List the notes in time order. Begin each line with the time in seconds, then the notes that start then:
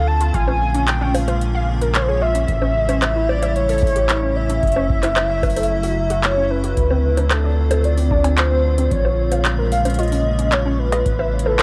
Already playing: D2 D3 A3 C4 F4
0.07 A5
0.21 F4, closed hi-hat
0.34 A#1 C#3 G#3 A#3 F4 G#5, kick, closed hi-hat
0.48 C#4, high bongo
0.74 C#4, closed hi-hat
0.88 G5, clap, closed hi-hat
1.01 C#4
1.15 F5, open hi-hat, high bongo
1.28 F4, closed hi-hat, high bongo
1.41 closed hi-hat
1.55 F5
1.81 A#4, closed hi-hat
1.95 C#5, clap, closed hi-hat
2.02 C5
2.08 G#4 C#5
2.22 F4 E5
2.35 C#4, closed hi-hat
2.48 A1 G3 A3 E4, kick, closed hi-hat
2.62 C#4, high bongo
2.89 C#4, closed hi-hat, high bongo
3.02 clap, closed hi-hat, high bongo
3.15 E4
3.29 D5, high bongo
3.42 E5, closed hi-hat, high bongo
3.56 C#5, closed hi-hat
3.69 A4, open hi-hat
3.78 open hi-hat
3.82 kick
3.87 open hi-hat
3.96 G4, closed hi-hat
4.09 E4, clap, closed hi-hat
4.23 C#4
4.36 E5
4.49 C#4, closed hi-hat
4.63 F#1 F#3, kick, closed hi-hat
4.67 closed hi-hat
4.72 closed hi-hat
4.76 C#4, high bongo
4.90 kick
5.03 E4, clap, closed hi-hat, high bongo
5.16 clap, closed hi-hat, high bongo
5.30 E5
5.43 kick, open hi-hat, high bongo
5.50 open hi-hat
5.56 A4, closed hi-hat, open hi-hat, high bongo
5.63 open hi-hat
5.83 F#4, open hi-hat
6.10 F#4, closed hi-hat
6.24 C#5, clap, closed hi-hat
6.37 C#4
6.50 C#4 B4
6.64 F#4, closed hi-hat
6.77 D2 D3 C4 F4, kick, closed hi-hat
6.91 C4, high bongo
7.17 D4, closed hi-hat, high bongo
7.31 A4, clap, closed hi-hat, high bongo
7.44 D5
7.71 A4, closed hi-hat, high bongo
7.74 high bongo
7.78 high bongo
7.81 closed hi-hat, high bongo
7.84 D5, high bongo
7.88 high bongo
7.91 high bongo
7.98 C4, open hi-hat
8.11 D4, kick
8.24 C4, closed hi-hat, cowbell
8.38 C5, clap, closed hi-hat
8.51 C4
8.78 C4, closed hi-hat
8.91 A#1 C#3 G#3 A#3 C#5, kick, closed hi-hat
9.05 F4, high bongo
9.32 F5, closed hi-hat, high bongo
9.45 clap, closed hi-hat
9.58 A#4
9.72 F5, open hi-hat
9.85 C#4, closed hi-hat, high bongo
9.90 closed hi-hat
9.94 closed hi-hat
9.98 F4 D#5, closed hi-hat
10.07 closed hi-hat
10.12 C#4, open hi-hat
10.39 C#4, closed hi-hat
10.52 C#5, clap, closed hi-hat
10.65 C#4
10.79 B4
10.92 F4, closed hi-hat, cowbell
11.06 A1 G3 A3 E4, kick, closed hi-hat
11.19 E5, high bongo
11.39 closed hi-hat
11.46 A4, high bongo
11.59 A4, clap, closed hi-hat, high bongo